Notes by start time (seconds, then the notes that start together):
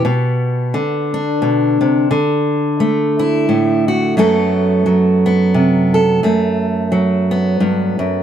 Already playing: B3
0.05 B2
0.74 D3
1.14 D4
1.42 B2
1.81 C3
2.11 D3
2.80 A3
3.19 E4
3.49 A2
3.88 F#4
4.17 F#2 F#3 A3 B3 A4
4.86 F#3
5.26 B3
5.54 C3
5.94 A4
6.23 F#2 A3
6.92 F#3
7.31 B3
7.60 G2
7.99 F#2